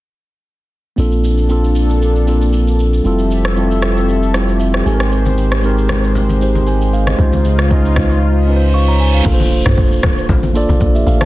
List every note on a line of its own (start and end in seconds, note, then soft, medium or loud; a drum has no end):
0.96 3.01 A#1 medium
0.96 1.40 A#3 medium
0.96 3.03 A#3 medium
0.96 1.40 C4 medium
0.96 1.40 D4 medium
0.96 3.03 D4 medium
0.96 1.41 F4 medium
0.96 3.03 A4 medium
0.96 1.41 A4 medium
0.96 shaker medium
1.12 shaker medium
1.24 shaker medium
1.38 shaker soft
1.48 2.12 A#3 medium
1.48 2.12 C4 medium
1.48 2.13 D4 medium
1.48 2.13 F4 medium
1.48 2.14 A4 medium
1.48 shaker medium
1.64 shaker medium
1.75 shaker medium
1.90 shaker soft
2.02 shaker medium
2.16 shaker soft
2.25 2.90 A#3 medium
2.25 2.90 C4 medium
2.25 2.90 D4 medium
2.25 2.91 F4 medium
2.25 2.91 A4 medium
2.25 shaker loud
2.42 shaker medium
2.53 shaker medium
2.67 shaker medium
2.79 shaker medium
2.93 shaker medium
3.03 4.82 F1 medium
3.03 4.84 F3 medium
3.03 3.46 G3 medium
3.03 3.47 C4 medium
3.03 4.84 C4 medium
3.03 3.47 E4 medium
3.03 3.48 F4 medium
3.03 7.15 G4 medium
3.03 4.84 A4 medium
3.03 3.48 A4 medium
3.03 4.84 E5 medium
3.03 shaker medium
3.19 shaker medium
3.31 shaker medium
3.45 cross-stick medium
3.45 shaker soft
3.55 4.19 G3 medium
3.55 4.19 C4 medium
3.55 4.20 E4 medium
3.55 4.20 F4 medium
3.55 4.21 A4 medium
3.55 shaker medium
3.71 shaker medium
3.82 cross-stick medium
3.82 shaker medium
3.97 shaker soft
4.09 shaker medium
4.22 shaker soft
4.33 4.85 G3 medium
4.33 4.84 C4 medium
4.33 4.86 E4 medium
4.33 4.87 F4 medium
4.33 4.86 G4 medium
4.33 cross-stick medium
4.33 shaker loud
4.48 shaker medium
4.60 4.84 E5 medium
4.60 shaker medium
4.74 cross-stick medium
4.74 shaker medium
4.84 7.15 G#1 medium
4.84 5.48 G#3 medium
4.84 9.22 G#3 medium
4.84 5.49 C4 medium
4.84 5.49 D#4 medium
4.84 5.50 G4 medium
4.84 4.94 A4 medium
4.84 9.22 C5 medium
4.84 5.10 G#5 medium
4.84 shaker medium
4.94 5.53 A#4 loud
5.00 cross-stick medium
5.00 shaker medium
5.12 shaker medium
5.26 high conga medium
5.26 shaker medium
5.38 shaker medium
5.51 cross-stick medium
5.51 shaker soft
5.62 6.26 G#3 medium
5.62 6.26 C4 medium
5.62 6.27 D#4 medium
5.62 6.27 G4 medium
5.62 6.28 A#4 medium
5.62 shaker medium
5.78 shaker medium
5.89 cross-stick medium
5.89 high conga medium
5.89 low conga medium
5.89 shaker medium
6.04 shaker soft
6.15 low conga medium
6.15 shaker medium
6.29 high conga medium
6.29 shaker soft
6.39 7.03 G#3 medium
6.39 7.04 C4 medium
6.39 7.04 D#4 medium
6.39 6.68 G4 medium
6.39 6.67 C5 medium
6.39 shaker loud
6.55 high conga medium
6.55 shaker medium
6.67 6.92 C5 medium
6.67 6.92 G#5 medium
6.67 shaker medium
6.81 shaker medium
6.93 7.07 G#4 medium
6.93 7.07 F5 medium
6.93 shaker medium
7.07 7.32 G4 medium
7.07 7.32 D#5 medium
7.07 cross-stick medium
7.07 high conga medium
7.07 shaker medium
7.17 9.22 C#2 medium
7.17 9.24 C#3 medium
7.17 7.60 G#3 medium
7.17 7.61 C#4 medium
7.17 9.24 D#4 medium
7.17 7.61 D#4 medium
7.17 9.24 F4 medium
7.17 7.62 F4 medium
7.17 7.62 C5 medium
7.17 kick loud
7.17 shaker medium
7.32 high conga medium
7.32 shaker medium
7.45 shaker medium
7.59 cross-stick medium
7.59 shaker soft
7.69 8.33 G#3 medium
7.69 8.33 C#4 medium
7.69 8.34 D#4 medium
7.69 8.34 F4 medium
7.69 8.34 D#5 medium
7.69 kick loud
7.69 shaker medium
7.85 shaker medium
7.96 kick loud
7.96 cross-stick loud
7.96 high conga medium
7.96 low conga medium
7.96 shaker medium
8.11 shaker soft
8.22 reverse cymbal medium
8.46 9.10 G#3 medium
8.46 9.11 C#4 medium
8.46 9.11 D#4 medium
8.46 9.12 F4 medium
8.46 8.56 B4 medium
8.56 8.78 C5 medium
8.74 8.88 F5 medium
8.74 8.87 C#6 medium
8.88 9.00 C#5 medium
8.88 8.99 A#5 medium
9.00 9.14 C5 medium
9.00 9.13 G#5 medium
9.14 9.39 G#4 medium
9.14 9.39 F5 medium
9.24 9.62 A#1 loud
9.24 10.08 A#3 medium
9.24 10.08 D4 medium
9.24 10.09 F4 medium
9.24 10.09 A4 medium
9.24 kick loud
9.24 crash loud
9.24 impact medium
9.24 shaker medium
9.34 10.13 C5 medium
9.39 high conga medium
9.39 shaker medium
9.52 shaker loud
9.66 9.99 A#1 loud
9.66 cross-stick medium
9.66 mid tom loud
9.66 shaker soft
9.77 kick loud
9.77 shaker medium
9.92 shaker medium
10.03 kick loud
10.03 cross-stick medium
10.03 high conga medium
10.03 low conga medium
10.03 shaker medium
10.18 shaker medium
10.29 10.65 A1 loud
10.29 kick loud
10.29 low conga medium
10.29 shaker medium
10.43 high conga medium
10.43 shaker medium
10.53 10.97 A#3 medium
10.53 10.97 D4 medium
10.53 10.97 F4 medium
10.53 10.81 A4 medium
10.53 10.82 D5 loud
10.53 shaker loud
10.69 10.80 A#1 medium
10.69 high conga medium
10.69 shaker medium
10.81 11.04 A#1 medium
10.81 kick medium
10.81 shaker medium
10.95 11.06 G4 medium
10.95 11.06 E5 medium
10.95 shaker medium
11.07 11.25 A1 medium
11.07 11.21 A4 medium
11.07 11.20 F5 medium
11.07 shaker medium
11.21 11.25 C5 medium
11.21 11.25 A5 medium
11.21 cross-stick medium
11.21 high conga medium
11.21 shaker medium